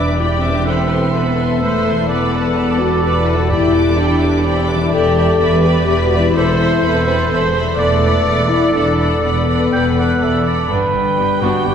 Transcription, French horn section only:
Already playing: D4
0.19 E4
0.36 C4
0.51 D4
0.67 C4
1.13 B3
1.61 A3
2.07 B3
2.79 F#4
3.02 G4
3.20 E4
3.36 F#4
3.51 E4
3.97 D4
4.45 C4
4.61 D4
4.79 E4
4.94 A4
5.65 G4
5.87 G4
6.05 F#4
6.19 E4
7.07 C4
7.77 A3
8.49 E4
8.73 D4
9.20 B3
10.70 G3 D4

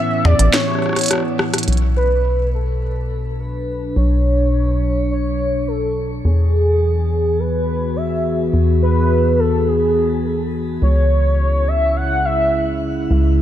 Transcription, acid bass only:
0.25 E2
0.39 A1
1.68 B1
3.96 B1
6.25 E2
8.53 E2
10.82 C#2
13.11 C#2

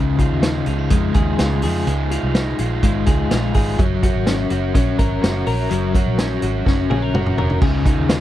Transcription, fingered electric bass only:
Already playing: C#2
0.30 D#2
0.67 C#2
0.91 F2
1.15 D#2
1.39 C#2
1.63 F2
1.87 C#2
2.23 C2
2.59 A#1
2.83 G#1
3.07 C#2
3.32 A#1
3.55 G#1
3.79 F#1
4.16 G#1
4.51 F#1
4.75 A#1
4.99 G#1
5.23 F#1
5.47 A#1
5.71 F#1
6.06 A#1
6.42 G#1
6.66 F#1
6.90 A#1
7.14 F#1
7.37 F1
7.62 C#2
7.97 D#2

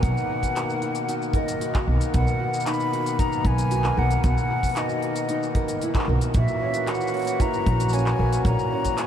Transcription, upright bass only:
0.03 B1
1.87 B1
2.14 B1
3.45 B1
3.97 B1
4.24 B1
6.08 B1
6.35 A#1
7.66 A#1
8.19 A#1
8.45 A#1

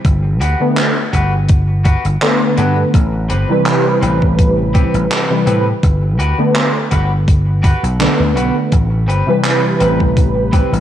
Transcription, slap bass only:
0.05 G1
0.41 D2
1.13 G1
2.05 G1
2.58 G2
2.94 A1
3.30 G1
4.02 A1
4.94 A1
5.47 A2
5.83 G1
6.19 D2
6.92 G1
7.83 B1
8.20 D2
8.36 B1
8.72 A1
9.09 G1
9.81 A1
10.73 A1

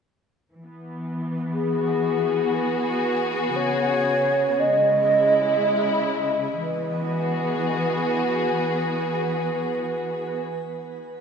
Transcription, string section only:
0.53 E3
0.65 B3
1.72 F#4
1.87 G#4
3.57 C#3
4.73 G#3
4.96 E4
6.61 E3
6.78 B3
6.95 F#4
7.09 G#4

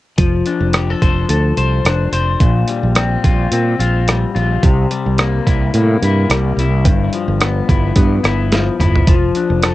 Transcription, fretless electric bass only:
0.19 F1
0.60 F1
1.02 F1
1.29 D2
1.57 C2
1.85 F1
2.12 F1
2.40 A#1
2.83 A#1
3.24 A#1
3.52 A#2
3.79 A#1
4.35 A#1
4.63 C2
5.06 C2
5.47 C2
5.74 A2
6.02 G2
6.29 C2
6.57 C2
6.85 G1
7.28 G1
7.69 G1
7.96 G2
8.24 G1
8.80 G1
9.07 F1
9.50 F1

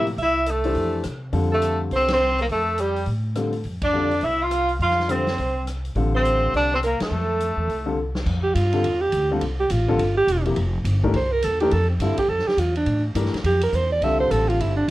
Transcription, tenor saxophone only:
0.22 E4
0.51 A3
1.54 A3
1.96 C4
2.13 C4
2.42 A#3
2.52 A3
2.81 G3
3.84 D4
4.25 E4
4.43 F4
4.82 F4
5.11 C4
6.16 C4
6.56 D4
6.75 C4
6.85 A#3
7.02 A3

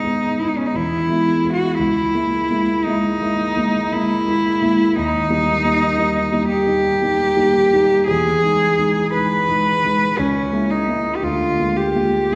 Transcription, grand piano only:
Already playing: G#2 G#3 B3 D#4
0.04 G#3 B3 D#4
0.40 G#3 B3 D#4
0.74 E2
1.09 G#3 B3 E4
1.44 G#3 B3 E4
1.79 C#2
2.14 G#3 A#3 E4
2.51 G#3 A#3 E4
2.87 G#3 A#3 E4
3.21 G#3 A#3 E4
3.57 G#3 A#3 E4
3.93 G#3 A#3 E4
4.28 G#3 A#3 E4
4.62 G#3 A#3 E4
4.96 D#2
5.30 G3 A#3 D#4
5.65 G3 A#3 D#4
5.98 G3 A#3 D#4
6.32 G3 A#3 D#4
6.67 G3 A#3 D#4
7.02 G3 A#3 D#4
7.37 G3 A#3 D#4
7.73 G3 A#3 D#4
8.08 E2
8.44 G#3 D#4
8.79 G#3 D#4
9.14 G#3 D#4
9.49 G#3 D#4
9.84 G#3 D#4
10.18 C#2
10.53 G#3 A#3 E4
10.88 G#3 A#3 E4
11.23 D2
11.59 G#3 A#3 F4
11.96 G#3 A#3 F4
12.32 G#3 A#3

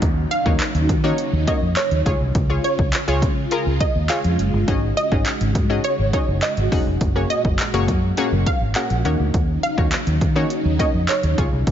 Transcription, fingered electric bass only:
0.02 D#2
0.46 D#2
0.75 D#2
0.89 D#3
1.33 D#2
1.62 F2
1.91 D#2
2.06 C#2
2.20 C2
2.35 C#2
2.79 C#2
3.08 C#2
3.22 C#3
3.66 C#2
3.95 D#2
4.25 F2
4.39 F#1
4.53 G1
4.68 G#1
5.12 G#1
5.41 G#1
5.55 G#2
5.99 G#1
6.28 F#1
6.57 G#1
6.72 E1
6.86 F1
7.01 F#1
7.45 F#1
7.74 F#1
7.88 F#2
8.32 F#1
8.61 G#1
8.90 A#1
9.05 D#2
9.20 D2
9.34 D#2
9.78 D#2
10.07 D#2
10.21 D#3
10.65 D#2
10.94 F2
11.23 D#2
11.38 C#2
11.52 C2
11.67 C#2

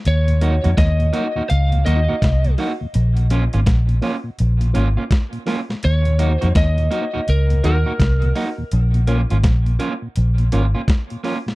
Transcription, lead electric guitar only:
0.08 C#5
0.78 D#5
1.50 F5
1.86 D#5
5.85 C#5
6.32 C5
6.57 D#5
7.30 A#4
7.65 A#4

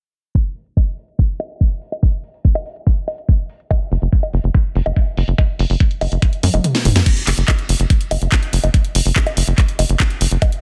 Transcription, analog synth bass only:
3.92 F#1
4.02 F#1
4.34 F#1
4.44 F#1
4.75 F#1
4.86 F#1
5.17 F#1
5.28 F#1
5.59 F#1
5.70 F#1
6.01 F#1
6.12 F#1
6.43 F#2
6.54 F#1
6.85 F#1
6.96 F#2
7.27 F#1
7.38 F#1
7.69 F#1
7.80 F#1
8.11 F#1
8.22 F#1
8.53 F#1
8.64 F#1
8.95 F#1
9.06 F#1
9.37 F#1
9.47 F#1
9.79 F#1
9.89 F#1
10.21 F#1
10.31 F#1

